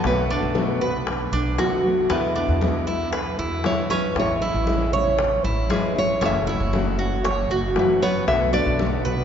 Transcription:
Already playing: cuban tres B3
0.04 upright bass B1, steel-string acoustic guitar B2 D3 A3 B3 F#4, nylon-string guitar B4, high bongo, high conga
0.30 cuban tres D4, high conga
0.42 upright bass B1
0.55 steel-string acoustic guitar B2 D3 A3 B3 F#4, high bongo, high conga
0.81 steel-string acoustic guitar A3 B3 F#4, cuban tres B4, high conga, low conga
1.07 muted steel-string acoustic guitar stroke, high bongo, high conga
1.33 upright bass B1, cuban tres D4, high conga
1.58 steel-string acoustic guitar B2 D3 A3 B3 F#4, cuban tres F#4, high bongo, low bongo, high conga
1.84 steel-string acoustic guitar A3 B3 F#4, high conga
2.10 upright bass E2, steel-string acoustic guitar B2 D3 G#3 B3 E4, cuban tres B3, high bongo, high conga
2.35 cuban tres D4, high bongo, high conga
2.48 upright bass E2
2.61 steel-string acoustic guitar B2 D3 G#3 B3 E4, high bongo, high conga
2.87 steel-string acoustic guitar G#3 B3 E4, cuban tres E4, high bongo, high conga
3.12 cuban tres B4, muted steel-string acoustic guitar stroke, high bongo, high conga
3.39 upright bass E2, cuban tres E4, high bongo, high conga
3.64 steel-string acoustic guitar B2 D3 G#3 B3 E4, nylon-string guitar C#5, high bongo, low bongo, high conga
3.90 steel-string acoustic guitar G#3 B3 E4, cuban tres C#4, nylon-string guitar B4, high conga
4.15 upright bass A1, steel-string acoustic guitar E3 G#3 C#4 E4, high bongo, high conga
4.19 nylon-string guitar C#5
4.41 cuban tres E4, high conga
4.54 upright bass A1
4.67 steel-string acoustic guitar E3 G#3 C#4 E4, high bongo, high conga
4.93 steel-string acoustic guitar G#3 C#4 E4, cuban tres C#5, high conga, low conga
5.19 muted steel-string acoustic guitar stroke, high bongo, high conga, low conga
5.44 upright bass A1, cuban tres E4, high conga
5.69 steel-string acoustic guitar E3 G#3 C#4 E4, cuban tres G#4, high bongo, low bongo, high conga
5.73 nylon-string guitar B4
5.95 steel-string acoustic guitar G#3 C#4 E4, nylon-string guitar C#5, high conga
6.21 upright bass F#1, steel-string acoustic guitar C#3 E3 A3 C#4 F#4, cuban tres C#4, high bongo, high conga
6.25 nylon-string guitar E5
6.47 cuban tres E4, nylon-string guitar C#5, high bongo, high conga
6.60 upright bass F#1
6.73 steel-string acoustic guitar C#3 E3 A3 C#4 F#4, high bongo, high conga
6.99 steel-string acoustic guitar A3 C#4 F#4, cuban tres F#4, high bongo, high conga
7.24 cuban tres C#5, muted steel-string acoustic guitar stroke, high bongo, high conga
7.50 upright bass F#1, cuban tres F#4, high bongo, high conga
7.76 steel-string acoustic guitar C#3 E3 A3 C#4 F#4, nylon-string guitar B4, high bongo, low bongo, high conga
8.02 steel-string acoustic guitar A3 C#4 F#4, cuban tres B3, nylon-string guitar C#5, high conga
8.27 upright bass B1, steel-string acoustic guitar B2 D3 A3 B3 F#4, nylon-string guitar E5, high bongo
8.53 cuban tres D4, nylon-string guitar D5, high conga
8.66 upright bass B1
8.79 steel-string acoustic guitar B2 D3 A3 B3 F#4, high bongo, high conga
9.05 steel-string acoustic guitar A3 B3 F#4, cuban tres B4, high conga, low conga

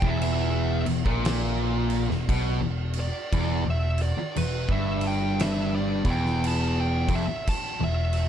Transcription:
0.02 picked electric bass E1, distorted electric guitar E2, kick
0.07 lead electric guitar E5
0.21 lead electric guitar E5, crash
0.86 picked electric bass E1, distorted electric guitar E2, crash
1.05 picked electric bass A#1, distorted electric guitar A#2, kick
1.25 snare, crash
1.90 crash
2.10 picked electric bass E1, distorted electric guitar E2, snare
2.29 picked electric bass B1, distorted electric guitar B2, kick, crash
2.61 picked electric bass E1, distorted electric guitar E2
2.93 crash
3.00 lead electric guitar D5
3.32 picked electric bass E1, distorted electric guitar E2, kick, crash
3.65 picked electric bass E1, distorted electric guitar E2
3.70 lead electric guitar E5
3.98 crash
4.02 lead electric guitar D5
4.17 muted picked electric bass stroke, muted distorted electric guitar stroke
4.36 picked electric bass E1, distorted electric guitar E2, lead electric guitar B4, crash
4.69 picked electric bass G1, distorted electric guitar G2, lead electric guitar E5, kick
5.01 crash
5.07 lead electric guitar G5
5.40 lead electric guitar E5, snare, crash
5.75 lead electric guitar D5
6.05 picked electric bass E1, distorted electric guitar E2, kick, crash
6.10 lead electric guitar G5
6.25 snare
6.44 lead electric guitar A5, crash
6.81 lead electric guitar G5
7.08 picked electric bass F1, distorted electric guitar F2, kick, crash
7.15 lead electric guitar E5
7.28 muted picked electric bass stroke, muted distorted electric guitar stroke
7.47 lead electric guitar A5, kick, crash
7.80 picked electric bass E1, distorted electric guitar E2, lead electric guitar E5
8.13 crash

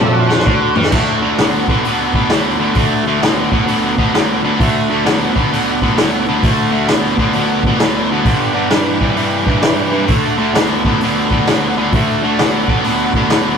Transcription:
Already playing: tine electric piano F2, distorted electric guitar F3
0.00 tonewheel organ F#3 A3 D4 A4, mid tom
0.13 tonewheel organ F#4
0.30 snare
0.39 snare
0.46 tine electric piano D2, distorted electric guitar D3, kick
0.76 tine electric piano G2, distorted electric guitar G3, floor tom
0.84 snare
0.91 tine electric piano D2, distorted electric guitar D3 A3, tonewheel organ D4 F#4 A4, kick, crash
1.22 tine electric piano D2, distorted electric guitar D3 A3
1.38 tine electric piano D2, distorted electric guitar D3 B3, snare, open hi-hat
1.67 tine electric piano D3, distorted electric guitar D3 B3, kick
1.83 tine electric piano D2, distorted electric guitar D3 B3, open hi-hat
2.13 tine electric piano D2, distorted electric guitar D3 B3, kick
2.29 tine electric piano D2, distorted electric guitar D3 B3, snare, open hi-hat
2.58 tine electric piano D2, distorted electric guitar D3 B3
2.75 tine electric piano D2, distorted electric guitar D3 A3, kick, open hi-hat
3.03 tine electric piano D2, distorted electric guitar D3
3.07 distorted electric guitar A3
3.19 tine electric piano D2, distorted electric guitar D3 B3, snare, open hi-hat
3.52 tine electric piano D2, distorted electric guitar D3 B3, kick
3.66 tine electric piano D2, distorted electric guitar D3 B3, open hi-hat
3.97 tine electric piano D2, distorted electric guitar D3 B3, kick
4.12 tine electric piano D2, distorted electric guitar D3 B3, snare, open hi-hat
4.42 tine electric piano D2, distorted electric guitar D3 B3
4.60 tine electric piano D2, distorted electric guitar D3 A3, tonewheel organ D4 F#4 A4, kick, open hi-hat
4.89 tine electric piano D2, distorted electric guitar D3 A3
5.05 tine electric piano D2, distorted electric guitar D3 B3, snare, open hi-hat
5.35 distorted electric guitar D3 B3, tine electric piano D3, kick
5.50 tine electric piano D2, distorted electric guitar D3 B3, open hi-hat
5.81 tine electric piano D2, distorted electric guitar D3 B3, kick
5.96 tine electric piano D2, distorted electric guitar D3 B3, snare, open hi-hat
6.26 tine electric piano D2, distorted electric guitar D3 B3
6.43 tine electric piano D2, distorted electric guitar D3 A3, kick, open hi-hat
6.71 tine electric piano D2, distorted electric guitar D3 A3
6.87 tine electric piano D2, distorted electric guitar D3 B3, snare, open hi-hat
7.18 tine electric piano D2, distorted electric guitar D3 B3, kick
7.33 tine electric piano D2, distorted electric guitar D3 B3, open hi-hat
7.63 tine electric piano D2, distorted electric guitar D3, kick
7.67 distorted electric guitar B3
7.79 tine electric piano D2, distorted electric guitar D3, snare, open hi-hat
7.83 distorted electric guitar B3
8.09 tine electric piano D2, distorted electric guitar D3 B3
8.25 tine electric piano G2, distorted electric guitar G2 D3, tonewheel organ D4 G4 B4, kick, open hi-hat
8.54 tine electric piano G2, distorted electric guitar G2 D3
8.70 distorted electric guitar G2 E3, tine electric piano G2, snare, open hi-hat
8.99 distorted electric guitar G2 E3, tine electric piano G3, kick
9.16 distorted electric guitar G2 E3, tine electric piano G2, open hi-hat
9.45 distorted electric guitar G2 E3, tine electric piano G2, kick
9.62 distorted electric guitar G2 E3, tine electric piano G2, snare, open hi-hat
9.91 distorted electric guitar G2 E3, tine electric piano G2
10.07 tine electric piano D2, distorted electric guitar D3 A3, tonewheel organ D4 F#4 A4, kick, open hi-hat
10.37 tine electric piano D2, distorted electric guitar D3 A3
10.54 tine electric piano D2, distorted electric guitar D3 B3, snare, open hi-hat
10.84 tine electric piano D2, distorted electric guitar D3 B3, kick
11.01 tine electric piano D2, distorted electric guitar D3 B3, open hi-hat
11.31 tine electric piano D2, distorted electric guitar D3 B3, kick
11.47 tine electric piano D2, distorted electric guitar D3 B3, snare, open hi-hat
11.76 tine electric piano D2, distorted electric guitar D3 B3
11.92 tine electric piano D2, distorted electric guitar D3 A3, kick, open hi-hat
12.22 tine electric piano D2, distorted electric guitar D3 A3
12.39 tine electric piano D2, distorted electric guitar D3 B3, snare, open hi-hat
12.68 tine electric piano D3, distorted electric guitar D3 B3, kick
12.84 tine electric piano D2, distorted electric guitar D3 B3, open hi-hat
13.14 tine electric piano D2, distorted electric guitar D3 B3, kick
13.30 tine electric piano D2, distorted electric guitar D3 B3, snare, open hi-hat

